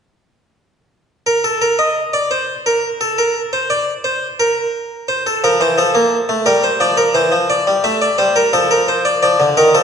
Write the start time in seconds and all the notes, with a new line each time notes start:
1.26 A#4
1.44 A4
1.62 A#4
1.79 D#5
2.13 D5
2.31 C5
2.66 A#4
3.01 A4
3.18 A#4
3.53 C5
3.70 D5
4.04 C5
4.40 A#4
5.08 C5
5.27 A4
5.44 F3 A#4
5.61 E3 C5
5.78 F3 A4
5.95 A#3
6.29 A3
6.46 G3 A#4
6.64 C5
6.80 F3 D5
6.97 A#4
7.14 E3 C5
7.32 F3
7.50 D5
7.67 G3
7.84 A3 E5
8.02 D5
8.18 G3 C5
8.36 A#4
8.53 F3 A4
8.71 A#4
8.88 C5
9.05 D5
9.23 F3 D5
9.40 D3
9.57 D#3 A#4
9.75 F3 A4